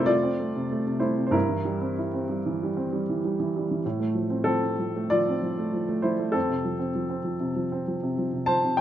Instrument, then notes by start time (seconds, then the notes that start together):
upright piano
Already playing: F2 C3 A3 C4 D4 E4 F4 A4 A#4 C5 D5
0.06 A3 F4 D5
0.23 C4
0.40 A3
0.56 C3
0.72 A3
0.87 C3
1.00 A3 E4 C5
1.17 C3
1.27 C5
1.31 G2 E4 A#4
1.49 E3
1.65 G3
1.81 C4
1.99 E4
2.14 C4
2.29 G3
2.46 E3
2.63 G3
2.77 C4
2.93 G3
3.09 E3
3.25 G3
3.40 E3
3.57 G3
3.71 E3
3.86 A2
4.00 A3
4.15 F3
4.30 C4
4.44 F3 C4 A4
4.63 C4
4.79 F3
4.96 A3
5.10 F3 F4 D5
5.29 C4
5.43 F3
5.58 A3
5.73 F3
5.89 A3
6.02 F3 E4 C5
6.20 A3
6.32 F2 C4 A4
6.49 C3
6.65 F3
6.79 C4
6.95 F3
7.10 C4
7.24 F3
7.40 C3
7.56 F3
7.72 C4
7.88 F3
8.03 C3
8.18 F3
8.33 C3
8.46 F3 C5 A5
8.64 C3
8.77 G5